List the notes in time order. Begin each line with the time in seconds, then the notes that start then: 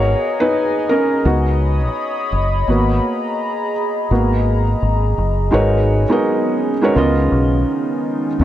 Already playing: G#1 B3 F#4 G#4 A#4 C#5 D#5 G#5 A#5
0.40 D#4 B4
0.89 C#4 A#4
1.25 C#2 B3 D#4 F#4 C#5 B5 D#6
2.32 F#1
2.67 G#1 A#3 B3 F#4 G#4 A#5
4.10 G#1 A#3 B3 F#4 A#5
4.82 G#1
5.18 F#1
5.51 G#1 F#3 G#3 B3 C#4 D#4 F#4 G#4 A#4 B4 C#5
6.09 G#3 D#4 F#4 A#4 B4 D#5
6.82 G#3 D#4 F#4 A#4 B4 C#5
6.94 C#2 C#3 D#3 B3 D#4 F4 A#4 D#5
7.32 B1
8.39 D#2 D#3 F#3 C#4